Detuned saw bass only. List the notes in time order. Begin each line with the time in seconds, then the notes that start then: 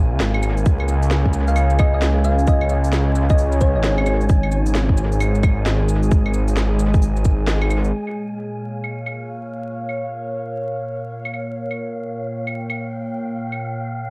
Already playing: A#1
0.12 C#2
0.21 G#1
0.66 C#2
2.48 C#2
3.76 G#1
4.30 G#1
6.12 G#1
7.02 G#1